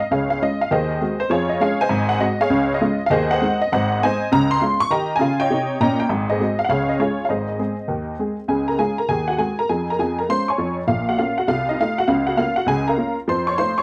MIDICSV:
0, 0, Header, 1, 2, 480
1, 0, Start_track
1, 0, Key_signature, -5, "major"
1, 0, Tempo, 299401
1, 176, Time_signature, 4, 2, 24, 8
1, 22167, End_track
2, 0, Start_track
2, 0, Title_t, "Honky-tonk piano"
2, 0, Program_c, 0, 3
2, 0, Note_on_c, 0, 75, 86
2, 174, Note_off_c, 0, 75, 0
2, 177, Note_on_c, 0, 37, 65
2, 180, Note_on_c, 0, 49, 65
2, 187, Note_on_c, 0, 77, 84
2, 195, Note_on_c, 0, 68, 63
2, 204, Note_on_c, 0, 73, 60
2, 443, Control_c, 0, 64, 127
2, 462, Note_off_c, 0, 77, 0
2, 474, Note_off_c, 0, 68, 0
2, 479, Note_off_c, 0, 73, 0
2, 486, Note_on_c, 0, 77, 82
2, 586, Note_off_c, 0, 37, 0
2, 588, Note_off_c, 0, 49, 0
2, 658, Note_off_c, 0, 77, 0
2, 673, Control_c, 0, 64, 0
2, 675, Note_on_c, 0, 56, 44
2, 676, Note_on_c, 0, 61, 48
2, 680, Note_on_c, 0, 65, 51
2, 685, Note_on_c, 0, 75, 92
2, 935, Note_off_c, 0, 56, 0
2, 935, Note_off_c, 0, 61, 0
2, 938, Note_off_c, 0, 65, 0
2, 981, Note_off_c, 0, 75, 0
2, 984, Note_on_c, 0, 77, 91
2, 1135, Note_on_c, 0, 39, 67
2, 1139, Note_on_c, 0, 51, 88
2, 1147, Note_off_c, 0, 77, 0
2, 1154, Note_on_c, 0, 75, 92
2, 1164, Note_on_c, 0, 68, 63
2, 1175, Note_on_c, 0, 72, 67
2, 1392, Control_c, 0, 64, 127
2, 1545, Note_off_c, 0, 39, 0
2, 1548, Note_off_c, 0, 51, 0
2, 1616, Note_on_c, 0, 56, 46
2, 1625, Note_on_c, 0, 60, 49
2, 1636, Note_on_c, 0, 66, 55
2, 1642, Control_c, 0, 64, 0
2, 1881, Note_off_c, 0, 56, 0
2, 1887, Note_off_c, 0, 68, 0
2, 1888, Note_off_c, 0, 60, 0
2, 1893, Note_off_c, 0, 72, 0
2, 1896, Note_off_c, 0, 66, 0
2, 1922, Note_on_c, 0, 72, 89
2, 1937, Note_off_c, 0, 75, 0
2, 2079, Note_on_c, 0, 41, 72
2, 2082, Note_on_c, 0, 53, 76
2, 2097, Note_off_c, 0, 72, 0
2, 2097, Note_on_c, 0, 73, 92
2, 2108, Note_on_c, 0, 65, 70
2, 2110, Note_on_c, 0, 68, 69
2, 2362, Control_c, 0, 64, 127
2, 2392, Note_off_c, 0, 65, 0
2, 2393, Note_off_c, 0, 68, 0
2, 2394, Note_on_c, 0, 75, 79
2, 2408, Note_off_c, 0, 73, 0
2, 2497, Note_off_c, 0, 41, 0
2, 2498, Note_off_c, 0, 53, 0
2, 2568, Note_on_c, 0, 56, 54
2, 2573, Note_off_c, 0, 75, 0
2, 2582, Note_on_c, 0, 61, 50
2, 2587, Note_on_c, 0, 77, 94
2, 2591, Note_on_c, 0, 65, 54
2, 2593, Note_on_c, 0, 68, 77
2, 2600, Control_c, 0, 64, 0
2, 2606, Note_on_c, 0, 73, 82
2, 2836, Note_off_c, 0, 56, 0
2, 2846, Note_off_c, 0, 61, 0
2, 2853, Note_off_c, 0, 65, 0
2, 2875, Note_off_c, 0, 68, 0
2, 2882, Note_off_c, 0, 73, 0
2, 2893, Note_off_c, 0, 77, 0
2, 2901, Note_on_c, 0, 80, 100
2, 2911, Note_on_c, 0, 72, 76
2, 2914, Note_on_c, 0, 75, 71
2, 3035, Note_on_c, 0, 44, 96
2, 3044, Note_on_c, 0, 32, 78
2, 3318, Control_c, 0, 64, 127
2, 3348, Note_off_c, 0, 72, 0
2, 3348, Note_on_c, 0, 78, 101
2, 3350, Note_off_c, 0, 75, 0
2, 3377, Note_off_c, 0, 80, 0
2, 3455, Note_off_c, 0, 44, 0
2, 3460, Note_off_c, 0, 32, 0
2, 3529, Note_on_c, 0, 56, 53
2, 3529, Note_on_c, 0, 60, 56
2, 3531, Note_off_c, 0, 78, 0
2, 3531, Note_on_c, 0, 75, 98
2, 3538, Note_on_c, 0, 66, 66
2, 3564, Control_c, 0, 64, 0
2, 3797, Note_off_c, 0, 56, 0
2, 3797, Note_off_c, 0, 60, 0
2, 3804, Note_off_c, 0, 66, 0
2, 3846, Note_off_c, 0, 75, 0
2, 3861, Note_on_c, 0, 77, 101
2, 3867, Note_on_c, 0, 68, 82
2, 3879, Note_on_c, 0, 73, 85
2, 4005, Note_on_c, 0, 37, 78
2, 4016, Note_on_c, 0, 49, 80
2, 4287, Control_c, 0, 64, 127
2, 4387, Note_off_c, 0, 68, 0
2, 4393, Note_off_c, 0, 73, 0
2, 4397, Note_on_c, 0, 75, 91
2, 4421, Note_off_c, 0, 37, 0
2, 4422, Note_off_c, 0, 77, 0
2, 4427, Note_off_c, 0, 49, 0
2, 4505, Note_on_c, 0, 56, 62
2, 4509, Note_on_c, 0, 61, 61
2, 4515, Note_on_c, 0, 65, 73
2, 4520, Control_c, 0, 64, 0
2, 4769, Note_off_c, 0, 56, 0
2, 4771, Note_off_c, 0, 61, 0
2, 4776, Note_off_c, 0, 65, 0
2, 4888, Note_off_c, 0, 75, 0
2, 4912, Note_on_c, 0, 77, 91
2, 4970, Note_on_c, 0, 39, 83
2, 4977, Note_on_c, 0, 51, 93
2, 4984, Note_on_c, 0, 75, 103
2, 4991, Note_off_c, 0, 77, 0
2, 4995, Note_on_c, 0, 68, 86
2, 5004, Note_on_c, 0, 72, 81
2, 5232, Control_c, 0, 64, 127
2, 5277, Note_off_c, 0, 68, 0
2, 5282, Note_off_c, 0, 72, 0
2, 5293, Note_off_c, 0, 75, 0
2, 5302, Note_on_c, 0, 78, 103
2, 5331, Note_on_c, 0, 75, 80
2, 5338, Note_on_c, 0, 72, 72
2, 5384, Note_off_c, 0, 39, 0
2, 5388, Note_off_c, 0, 51, 0
2, 5470, Note_on_c, 0, 56, 64
2, 5472, Note_on_c, 0, 60, 55
2, 5482, Note_on_c, 0, 63, 59
2, 5490, Control_c, 0, 64, 0
2, 5732, Note_off_c, 0, 56, 0
2, 5734, Note_off_c, 0, 60, 0
2, 5741, Note_off_c, 0, 63, 0
2, 5760, Note_off_c, 0, 75, 0
2, 5763, Note_off_c, 0, 72, 0
2, 5778, Note_off_c, 0, 78, 0
2, 5796, Note_on_c, 0, 75, 101
2, 5956, Note_off_c, 0, 75, 0
2, 5971, Note_on_c, 0, 32, 76
2, 5976, Note_on_c, 0, 78, 99
2, 5979, Note_on_c, 0, 44, 78
2, 5999, Note_on_c, 0, 72, 74
2, 5999, Note_on_c, 0, 75, 76
2, 6196, Control_c, 0, 64, 127
2, 6367, Note_off_c, 0, 32, 0
2, 6372, Note_off_c, 0, 44, 0
2, 6420, Note_off_c, 0, 72, 0
2, 6420, Note_off_c, 0, 75, 0
2, 6440, Note_off_c, 0, 78, 0
2, 6447, Control_c, 0, 64, 0
2, 6451, Note_on_c, 0, 56, 57
2, 6464, Note_on_c, 0, 63, 68
2, 6465, Note_on_c, 0, 80, 104
2, 6466, Note_on_c, 0, 60, 59
2, 6486, Note_on_c, 0, 75, 83
2, 6492, Note_on_c, 0, 72, 84
2, 6707, Note_off_c, 0, 56, 0
2, 6717, Note_off_c, 0, 63, 0
2, 6719, Note_off_c, 0, 60, 0
2, 6903, Note_off_c, 0, 75, 0
2, 6906, Note_off_c, 0, 72, 0
2, 6921, Note_on_c, 0, 49, 93
2, 6924, Note_off_c, 0, 80, 0
2, 6928, Note_on_c, 0, 37, 87
2, 6935, Note_on_c, 0, 82, 116
2, 7174, Control_c, 0, 64, 127
2, 7228, Note_off_c, 0, 82, 0
2, 7228, Note_on_c, 0, 84, 106
2, 7321, Note_off_c, 0, 49, 0
2, 7325, Note_off_c, 0, 37, 0
2, 7393, Note_on_c, 0, 56, 54
2, 7396, Control_c, 0, 64, 0
2, 7400, Note_on_c, 0, 61, 52
2, 7408, Note_on_c, 0, 65, 61
2, 7654, Note_off_c, 0, 56, 0
2, 7659, Note_off_c, 0, 61, 0
2, 7665, Note_off_c, 0, 65, 0
2, 7700, Note_off_c, 0, 84, 0
2, 7701, Note_on_c, 0, 85, 122
2, 7861, Note_on_c, 0, 51, 78
2, 7867, Note_off_c, 0, 85, 0
2, 7871, Note_on_c, 0, 82, 99
2, 7884, Note_on_c, 0, 75, 86
2, 7893, Note_on_c, 0, 79, 74
2, 7895, Note_on_c, 0, 67, 77
2, 8113, Control_c, 0, 64, 127
2, 8240, Note_off_c, 0, 75, 0
2, 8245, Note_off_c, 0, 51, 0
2, 8245, Note_off_c, 0, 79, 0
2, 8261, Note_off_c, 0, 82, 0
2, 8265, Note_off_c, 0, 67, 0
2, 8267, Note_on_c, 0, 80, 100
2, 8326, Note_on_c, 0, 49, 81
2, 8351, Note_on_c, 0, 65, 90
2, 8366, Control_c, 0, 64, 0
2, 8653, Note_on_c, 0, 79, 103
2, 8655, Note_off_c, 0, 80, 0
2, 8669, Note_on_c, 0, 75, 73
2, 8674, Note_on_c, 0, 73, 81
2, 8715, Note_off_c, 0, 49, 0
2, 8731, Note_off_c, 0, 65, 0
2, 8822, Note_on_c, 0, 48, 77
2, 8848, Note_on_c, 0, 63, 78
2, 9204, Note_off_c, 0, 48, 0
2, 9220, Note_off_c, 0, 63, 0
2, 9264, Note_off_c, 0, 75, 0
2, 9267, Note_off_c, 0, 73, 0
2, 9298, Note_off_c, 0, 79, 0
2, 9305, Note_on_c, 0, 46, 78
2, 9313, Note_on_c, 0, 82, 101
2, 9322, Note_on_c, 0, 79, 82
2, 9334, Note_on_c, 0, 75, 87
2, 9339, Note_on_c, 0, 61, 82
2, 9591, Note_off_c, 0, 79, 0
2, 9604, Note_off_c, 0, 75, 0
2, 9614, Note_off_c, 0, 82, 0
2, 9615, Note_on_c, 0, 79, 93
2, 9686, Note_off_c, 0, 46, 0
2, 9706, Note_off_c, 0, 61, 0
2, 9770, Note_on_c, 0, 32, 74
2, 9770, Note_on_c, 0, 44, 83
2, 9782, Note_off_c, 0, 79, 0
2, 10031, Control_c, 0, 64, 127
2, 10094, Note_on_c, 0, 75, 92
2, 10113, Note_on_c, 0, 72, 59
2, 10114, Note_on_c, 0, 68, 60
2, 10180, Note_off_c, 0, 32, 0
2, 10180, Note_off_c, 0, 44, 0
2, 10255, Note_on_c, 0, 56, 47
2, 10267, Note_on_c, 0, 60, 56
2, 10275, Note_on_c, 0, 66, 51
2, 10279, Control_c, 0, 64, 0
2, 10519, Note_off_c, 0, 56, 0
2, 10528, Note_off_c, 0, 60, 0
2, 10533, Note_off_c, 0, 66, 0
2, 10546, Note_off_c, 0, 68, 0
2, 10546, Note_off_c, 0, 72, 0
2, 10563, Note_on_c, 0, 77, 85
2, 10568, Note_off_c, 0, 75, 0
2, 10649, Note_off_c, 0, 77, 0
2, 10653, Note_on_c, 0, 78, 89
2, 10721, Note_on_c, 0, 49, 80
2, 10724, Note_on_c, 0, 37, 67
2, 10736, Note_on_c, 0, 77, 91
2, 10737, Note_off_c, 0, 78, 0
2, 10754, Note_on_c, 0, 73, 73
2, 10762, Note_on_c, 0, 68, 64
2, 10985, Control_c, 0, 64, 127
2, 11031, Note_off_c, 0, 73, 0
2, 11036, Note_off_c, 0, 68, 0
2, 11043, Note_off_c, 0, 77, 0
2, 11047, Note_on_c, 0, 75, 76
2, 11134, Note_off_c, 0, 49, 0
2, 11136, Note_off_c, 0, 37, 0
2, 11209, Note_on_c, 0, 56, 46
2, 11216, Note_off_c, 0, 75, 0
2, 11218, Note_on_c, 0, 61, 41
2, 11221, Note_on_c, 0, 73, 77
2, 11237, Control_c, 0, 64, 0
2, 11242, Note_on_c, 0, 65, 66
2, 11242, Note_on_c, 0, 68, 62
2, 11474, Note_off_c, 0, 56, 0
2, 11480, Note_off_c, 0, 61, 0
2, 11594, Note_off_c, 0, 68, 0
2, 11595, Note_off_c, 0, 65, 0
2, 11611, Note_off_c, 0, 73, 0
2, 11622, Note_on_c, 0, 77, 75
2, 11686, Note_on_c, 0, 32, 56
2, 11687, Note_on_c, 0, 44, 65
2, 11697, Note_on_c, 0, 75, 71
2, 11700, Note_off_c, 0, 77, 0
2, 11708, Note_on_c, 0, 72, 57
2, 11714, Note_on_c, 0, 68, 56
2, 11940, Control_c, 0, 64, 127
2, 12095, Note_off_c, 0, 32, 0
2, 12096, Note_off_c, 0, 44, 0
2, 12148, Note_off_c, 0, 68, 0
2, 12171, Note_on_c, 0, 56, 44
2, 12172, Note_on_c, 0, 68, 52
2, 12178, Note_on_c, 0, 60, 49
2, 12196, Control_c, 0, 64, 0
2, 12434, Note_off_c, 0, 56, 0
2, 12435, Note_off_c, 0, 68, 0
2, 12440, Note_off_c, 0, 60, 0
2, 12631, Note_on_c, 0, 51, 56
2, 12634, Note_on_c, 0, 39, 63
2, 13046, Note_off_c, 0, 51, 0
2, 13047, Note_off_c, 0, 39, 0
2, 13133, Note_on_c, 0, 56, 48
2, 13140, Note_on_c, 0, 60, 42
2, 13150, Note_on_c, 0, 68, 48
2, 13380, Note_off_c, 0, 72, 0
2, 13395, Note_off_c, 0, 56, 0
2, 13400, Note_off_c, 0, 60, 0
2, 13407, Note_off_c, 0, 68, 0
2, 13438, Note_off_c, 0, 75, 0
2, 13596, Note_on_c, 0, 37, 59
2, 13597, Note_on_c, 0, 49, 70
2, 13605, Note_on_c, 0, 80, 72
2, 13623, Note_on_c, 0, 68, 59
2, 13870, Control_c, 0, 64, 127
2, 13902, Note_off_c, 0, 68, 0
2, 13914, Note_off_c, 0, 80, 0
2, 13914, Note_on_c, 0, 82, 79
2, 13934, Note_on_c, 0, 70, 56
2, 14008, Note_off_c, 0, 37, 0
2, 14008, Note_off_c, 0, 49, 0
2, 14081, Note_on_c, 0, 56, 47
2, 14084, Note_off_c, 0, 70, 0
2, 14085, Note_off_c, 0, 82, 0
2, 14086, Note_on_c, 0, 61, 44
2, 14089, Note_on_c, 0, 80, 84
2, 14099, Note_on_c, 0, 65, 46
2, 14101, Control_c, 0, 64, 0
2, 14114, Note_on_c, 0, 68, 67
2, 14346, Note_off_c, 0, 56, 0
2, 14349, Note_off_c, 0, 61, 0
2, 14359, Note_off_c, 0, 65, 0
2, 14388, Note_off_c, 0, 68, 0
2, 14395, Note_off_c, 0, 80, 0
2, 14400, Note_on_c, 0, 82, 79
2, 14419, Note_on_c, 0, 70, 57
2, 14565, Note_on_c, 0, 51, 72
2, 14566, Note_off_c, 0, 70, 0
2, 14568, Note_off_c, 0, 82, 0
2, 14569, Note_on_c, 0, 80, 89
2, 14572, Note_on_c, 0, 39, 60
2, 14598, Note_on_c, 0, 68, 67
2, 14825, Control_c, 0, 64, 127
2, 14870, Note_off_c, 0, 68, 0
2, 14872, Note_on_c, 0, 78, 80
2, 14875, Note_off_c, 0, 80, 0
2, 14901, Note_on_c, 0, 66, 53
2, 14972, Note_off_c, 0, 51, 0
2, 14977, Note_off_c, 0, 39, 0
2, 15034, Note_off_c, 0, 66, 0
2, 15041, Note_on_c, 0, 56, 45
2, 15043, Note_off_c, 0, 78, 0
2, 15046, Note_on_c, 0, 80, 79
2, 15054, Note_on_c, 0, 60, 42
2, 15058, Note_on_c, 0, 66, 48
2, 15062, Control_c, 0, 64, 0
2, 15069, Note_on_c, 0, 68, 60
2, 15306, Note_off_c, 0, 56, 0
2, 15315, Note_off_c, 0, 60, 0
2, 15318, Note_off_c, 0, 66, 0
2, 15344, Note_off_c, 0, 68, 0
2, 15353, Note_off_c, 0, 80, 0
2, 15373, Note_on_c, 0, 82, 86
2, 15390, Note_on_c, 0, 70, 62
2, 15532, Note_off_c, 0, 70, 0
2, 15534, Note_off_c, 0, 82, 0
2, 15540, Note_on_c, 0, 41, 67
2, 15541, Note_on_c, 0, 80, 72
2, 15544, Note_on_c, 0, 53, 62
2, 15561, Note_on_c, 0, 68, 62
2, 15775, Control_c, 0, 64, 127
2, 15831, Note_off_c, 0, 68, 0
2, 15841, Note_off_c, 0, 80, 0
2, 15877, Note_on_c, 0, 82, 77
2, 15903, Note_on_c, 0, 70, 56
2, 15917, Note_off_c, 0, 41, 0
2, 15919, Note_off_c, 0, 53, 0
2, 16019, Note_on_c, 0, 53, 64
2, 16020, Note_on_c, 0, 41, 72
2, 16026, Note_off_c, 0, 82, 0
2, 16027, Note_on_c, 0, 80, 78
2, 16028, Control_c, 0, 64, 0
2, 16029, Note_off_c, 0, 70, 0
2, 16041, Note_on_c, 0, 68, 62
2, 16311, Note_off_c, 0, 68, 0
2, 16324, Note_off_c, 0, 80, 0
2, 16330, Note_on_c, 0, 82, 74
2, 16356, Note_on_c, 0, 70, 63
2, 16397, Note_off_c, 0, 41, 0
2, 16397, Note_off_c, 0, 53, 0
2, 16493, Note_off_c, 0, 82, 0
2, 16495, Note_off_c, 0, 70, 0
2, 16497, Note_on_c, 0, 65, 42
2, 16501, Note_on_c, 0, 56, 43
2, 16503, Note_on_c, 0, 61, 41
2, 16511, Note_on_c, 0, 84, 100
2, 16524, Note_on_c, 0, 72, 68
2, 16757, Note_off_c, 0, 65, 0
2, 16760, Note_off_c, 0, 56, 0
2, 16762, Note_off_c, 0, 61, 0
2, 16792, Note_off_c, 0, 72, 0
2, 16806, Note_off_c, 0, 84, 0
2, 16808, Note_on_c, 0, 85, 78
2, 16830, Note_on_c, 0, 73, 62
2, 16834, Note_on_c, 0, 80, 64
2, 16963, Note_on_c, 0, 41, 71
2, 16966, Note_on_c, 0, 53, 66
2, 17259, Note_off_c, 0, 73, 0
2, 17261, Note_off_c, 0, 80, 0
2, 17280, Note_off_c, 0, 85, 0
2, 17347, Note_off_c, 0, 41, 0
2, 17349, Note_off_c, 0, 53, 0
2, 17432, Note_on_c, 0, 46, 67
2, 17435, Note_on_c, 0, 34, 59
2, 17438, Note_on_c, 0, 77, 85
2, 17464, Note_on_c, 0, 65, 58
2, 17711, Control_c, 0, 64, 127
2, 17742, Note_off_c, 0, 65, 0
2, 17750, Note_off_c, 0, 77, 0
2, 17776, Note_on_c, 0, 78, 82
2, 17783, Note_on_c, 0, 66, 56
2, 17845, Note_off_c, 0, 46, 0
2, 17847, Note_off_c, 0, 34, 0
2, 17922, Note_on_c, 0, 58, 46
2, 17929, Note_off_c, 0, 66, 0
2, 17934, Note_on_c, 0, 77, 82
2, 17936, Note_off_c, 0, 78, 0
2, 17939, Control_c, 0, 64, 0
2, 17941, Note_on_c, 0, 61, 44
2, 17948, Note_on_c, 0, 65, 67
2, 18187, Note_off_c, 0, 58, 0
2, 18201, Note_off_c, 0, 61, 0
2, 18224, Note_off_c, 0, 65, 0
2, 18238, Note_off_c, 0, 77, 0
2, 18240, Note_on_c, 0, 78, 81
2, 18264, Note_on_c, 0, 66, 66
2, 18395, Note_on_c, 0, 36, 61
2, 18401, Note_on_c, 0, 48, 76
2, 18408, Note_off_c, 0, 78, 0
2, 18408, Note_on_c, 0, 77, 93
2, 18409, Note_off_c, 0, 66, 0
2, 18417, Note_on_c, 0, 65, 73
2, 18657, Control_c, 0, 64, 127
2, 18699, Note_off_c, 0, 65, 0
2, 18716, Note_off_c, 0, 77, 0
2, 18740, Note_on_c, 0, 75, 80
2, 18752, Note_on_c, 0, 63, 60
2, 18808, Note_off_c, 0, 36, 0
2, 18811, Note_off_c, 0, 48, 0
2, 18894, Note_off_c, 0, 63, 0
2, 18899, Note_off_c, 0, 75, 0
2, 18908, Control_c, 0, 64, 0
2, 18910, Note_on_c, 0, 57, 47
2, 18927, Note_on_c, 0, 63, 51
2, 18929, Note_on_c, 0, 77, 96
2, 18949, Note_on_c, 0, 65, 64
2, 19168, Note_off_c, 0, 57, 0
2, 19180, Note_off_c, 0, 63, 0
2, 19207, Note_off_c, 0, 65, 0
2, 19212, Note_on_c, 0, 78, 90
2, 19217, Note_off_c, 0, 77, 0
2, 19239, Note_on_c, 0, 66, 69
2, 19360, Note_on_c, 0, 37, 69
2, 19360, Note_on_c, 0, 49, 72
2, 19362, Note_on_c, 0, 77, 82
2, 19375, Note_off_c, 0, 78, 0
2, 19378, Note_off_c, 0, 66, 0
2, 19383, Note_on_c, 0, 65, 64
2, 19615, Control_c, 0, 64, 127
2, 19663, Note_off_c, 0, 65, 0
2, 19665, Note_on_c, 0, 78, 83
2, 19674, Note_off_c, 0, 77, 0
2, 19693, Note_on_c, 0, 66, 65
2, 19772, Note_off_c, 0, 37, 0
2, 19772, Note_off_c, 0, 49, 0
2, 19828, Note_on_c, 0, 58, 54
2, 19837, Note_on_c, 0, 61, 45
2, 19837, Note_on_c, 0, 77, 92
2, 19842, Note_off_c, 0, 78, 0
2, 19844, Note_off_c, 0, 66, 0
2, 19864, Note_on_c, 0, 65, 72
2, 19874, Control_c, 0, 64, 0
2, 20098, Note_off_c, 0, 58, 0
2, 20105, Note_off_c, 0, 61, 0
2, 20138, Note_on_c, 0, 78, 89
2, 20144, Note_off_c, 0, 65, 0
2, 20152, Note_off_c, 0, 77, 0
2, 20162, Note_on_c, 0, 66, 67
2, 20300, Note_on_c, 0, 37, 72
2, 20308, Note_on_c, 0, 49, 72
2, 20319, Note_off_c, 0, 66, 0
2, 20319, Note_off_c, 0, 78, 0
2, 20325, Note_on_c, 0, 80, 103
2, 20336, Note_on_c, 0, 68, 77
2, 20621, Note_off_c, 0, 68, 0
2, 20637, Note_off_c, 0, 80, 0
2, 20644, Note_on_c, 0, 82, 85
2, 20662, Note_on_c, 0, 70, 69
2, 20669, Note_on_c, 0, 77, 65
2, 20722, Note_off_c, 0, 37, 0
2, 20726, Note_off_c, 0, 49, 0
2, 20791, Note_on_c, 0, 58, 45
2, 20796, Note_on_c, 0, 61, 54
2, 20807, Note_on_c, 0, 65, 55
2, 21061, Note_off_c, 0, 58, 0
2, 21065, Note_off_c, 0, 61, 0
2, 21073, Note_off_c, 0, 65, 0
2, 21099, Note_off_c, 0, 70, 0
2, 21103, Note_off_c, 0, 77, 0
2, 21123, Note_off_c, 0, 82, 0
2, 21285, Note_on_c, 0, 53, 82
2, 21294, Note_on_c, 0, 41, 69
2, 21307, Note_on_c, 0, 84, 92
2, 21317, Note_on_c, 0, 72, 73
2, 21554, Control_c, 0, 64, 127
2, 21593, Note_off_c, 0, 72, 0
2, 21595, Note_on_c, 0, 85, 86
2, 21609, Note_off_c, 0, 84, 0
2, 21614, Note_on_c, 0, 73, 66
2, 21698, Note_off_c, 0, 53, 0
2, 21702, Note_off_c, 0, 41, 0
2, 21768, Note_off_c, 0, 73, 0
2, 21770, Note_off_c, 0, 85, 0
2, 21770, Note_on_c, 0, 63, 52
2, 21771, Note_on_c, 0, 57, 44
2, 21773, Note_on_c, 0, 84, 96
2, 21777, Note_on_c, 0, 65, 59
2, 21792, Control_c, 0, 64, 0
2, 21793, Note_on_c, 0, 72, 77
2, 22036, Note_off_c, 0, 57, 0
2, 22036, Note_off_c, 0, 63, 0
2, 22041, Note_off_c, 0, 65, 0
2, 22072, Note_off_c, 0, 72, 0
2, 22083, Note_off_c, 0, 84, 0
2, 22089, Note_on_c, 0, 85, 92
2, 22105, Note_on_c, 0, 73, 74
2, 22167, Note_off_c, 0, 73, 0
2, 22167, Note_off_c, 0, 85, 0
2, 22167, End_track
0, 0, End_of_file